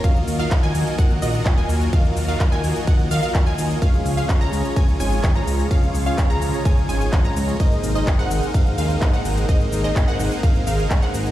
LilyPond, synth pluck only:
\new Staff \with { instrumentName = "Synth pluck" } { \time 4/4 \key ees \dorian \tempo 4 = 127 f''8. f''8 aes''8. ges''8 ees''8. aes''8. | f''8. f''8 aes''8. ges''8 f''16 f''8 aes''8. | f''8. f''8 bes''8. aes''8 aes''8. bes''8. | f''8. f''8 bes''8. aes''8 aes''8. bes''8. |
ees''8. ees''8 ges''8. f''8 f''8. ges''8. | ees''8. ees''8 ges''8. f''8 f''8. ges''8. | }